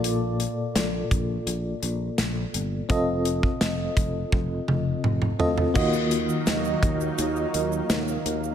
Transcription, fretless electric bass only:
X:1
M:4/4
L:1/8
Q:1/4=84
K:Eblyd
V:1 name="Fretless electric bass" clef=bass
B,,,2 B,,, B,,, B,,, B,,, B,,, G,,, | F,,,2 F,,, F,,, F,,, F,,, F,,, D,, | E,,2 E,, E,, E,, E,, E,, E,, |]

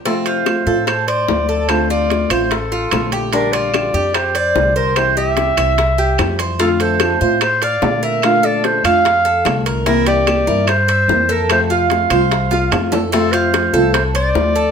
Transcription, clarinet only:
X:1
M:4/4
L:1/8
Q:1/4=147
K:F
V:1 name="Clarinet"
A c3 c d3 | c d2 c A3 z | B d3 c3 B | c e6 z |
A c3 c d2 e | f d c f4 z | B d3 c3 B | c f6 z |
A c3 c d3 |]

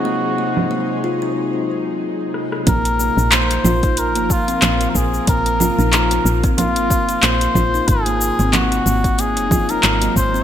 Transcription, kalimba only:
X:1
M:4/4
L:1/16
Q:"Swing 16ths" 1/4=92
K:Abmix
V:1 name="Kalimba"
B,2 B, z B,2 F E z8 | B,2 B, z B,2 F E z B, z C B,2 B, z | B,2 F E z B, z C B,2 B, z B,2 F E | z B, z C B,2 B, z B,2 F E z B, z C |]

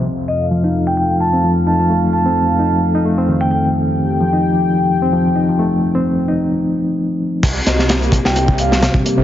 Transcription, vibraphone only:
X:1
M:4/4
L:1/16
Q:"Swing 16ths" 1/4=130
K:Fmix
V:1 name="Vibraphone"
z2 e z4 g g z a a z2 a a | z2 a6 z4 z g g z | z16 | z16 |
z2 e z4 g g z f z4 z |]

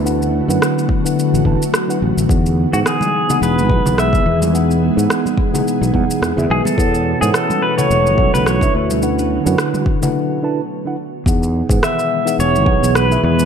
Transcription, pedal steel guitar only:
X:1
M:4/4
L:1/16
Q:"Swing 16ths" 1/4=107
K:E
V:1 name="Pedal steel guitar"
z16 | z3 F G4 B4 e3 z | z12 z2 G A- | A3 G A2 B c4 B c2 z2 |
z16 | z4 e4 c4 B2 B2 |]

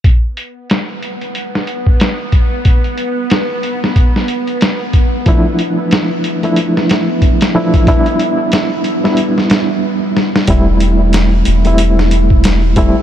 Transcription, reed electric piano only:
X:1
M:4/4
L:1/16
Q:"Swing 16ths" 1/4=92
K:Am
V:1 name="Reed electric piano"
z16 | z16 | [F,A,DE]6- [F,A,DE] [F,A,DE]6- [F,A,DE] [F,A,DE]2 | [G,B,DE]6- [G,B,DE] [G,B,DE] z8 |
[G,A,CE]6- [G,A,CE] [G,A,CE]6- [G,A,CE] [G,A,CE]2 |]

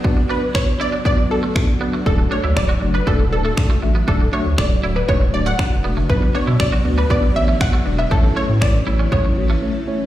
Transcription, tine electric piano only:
X:1
M:4/4
L:1/8
Q:1/4=119
K:D
V:1 name="Tine electric piano"
[B,DFd] [B,DFd] [B,DFd] [B,DFd] [B,DFd] [B,DFd] [B,DFd] [B,DFd] | [A,DFd] [A,DFd] [A,DFd] [A,DFd] [A,DFd] [A,DFd] [A,DFd] [A,DFe] | [A,DFd] [A,DFe] [A,DFA] [A,DFd] [A,DFd] [A,DFd] [A,DFd] [A,DFd] | [B,DFd] [B,DFd] [B,DFd] [B,DFd] [B,DFd] [B,DFc] [B,DFd] [B,DFd] |
[A,CEc] [A,CEc] [A,CEc] [A,CEc] [A,CEc] [A,CEF] [A,CEc] [A,CEc] |]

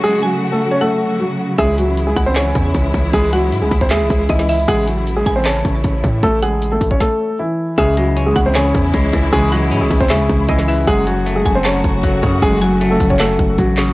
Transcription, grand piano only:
X:1
M:4/4
L:1/16
Q:1/4=155
K:C#m
V:1 name="Grand piano"
[G,G]2 [F,F]3 [A,A]2 [Cc] [A,A]4 [F,F]4 | [G,G]2 [F,F]3 [G,G]2 [^B,^B] [Cc]8 | [G,G]2 [F,F]3 [G,G]2 [^B,^B] [G,G]4 [E,E]4 | [G,G]2 [F,F]3 [G,G]2 [^B,^B] [Cc]8 |
[A,A]2 [G,G]3 [A,A]2 [Cc] [A,A]4 [E,E]4 | [G,G]2 [F,F]3 [G,G]2 [^B,^B] [Cc]8 | [G,G]2 [F,F]3 [G,G]2 [^B,^B] [G,G]4 [E,E]4 | [G,G]2 [F,F]3 [G,G]2 [^B,^B] [Cc]8 |
[G,G]2 [F,F]3 [A,A]2 [Cc] [A,A]4 [F,F]4 |]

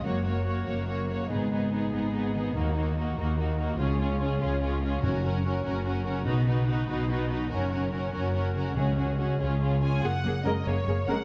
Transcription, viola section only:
X:1
M:6/8
L:1/8
Q:3/8=96
K:F#
V:1 name="Viola section"
A, A, A, A, A, A, | B, B, B, B, B, B, | A, A, A, A, A, A, | C C C C C C |
C C C C C C | D D D D D D | C C C C C C | C C C C C C |
[A,G] [A,G] [A,G] [A,G] [A,G] [A,G] |]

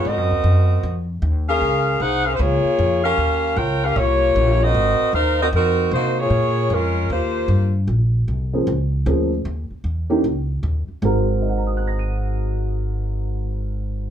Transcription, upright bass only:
X:1
M:4/4
L:1/8
Q:"Swing" 1/4=153
K:Ab
V:1 name="Upright bass" clef=bass
(3A,, _G,, E,, G,,2 F,,2 E,,2 | D,,2 C,,2 D,, z F,,2 | E,,2 D,,2 C,,2 B,,,2 | A,,, z E,,2 F,,2 C,2 |
B,,2 F,,2 E,,2 G,,2 | [K:Abmix] B,,,2 C,,2 D,,2 =D,,2 | E,, z _F,,2 D,,2 E,, z | A,,,8- |
A,,,8 |]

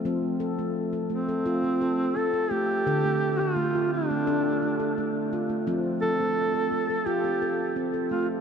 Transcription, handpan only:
X:1
M:4/4
L:1/16
Q:1/4=86
K:F
V:1 name="Handpan"
C2 A A,2 A A, A2 C A2 C A A,2 | A A,2 A A, F2 A, A2 A, A A,2 F A, | C2 A A,2 A A, A2 C A2 C A A,2 |]
V:2 name="Handpan"
F,8 F8 | D,8 D8 | F,8 F8 |]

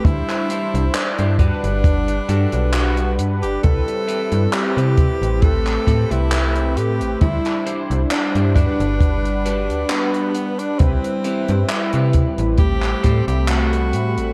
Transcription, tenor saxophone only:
X:1
M:4/4
L:1/16
Q:"Swing 16ths" 1/4=67
K:G
V:1 name="Tenor saxophone"
E4 D2 D6 F2 z G | A4 G4 A3 E3 G2 | E3 z D2 D6 B,3 D | C4 E3 z G3 G F4 |]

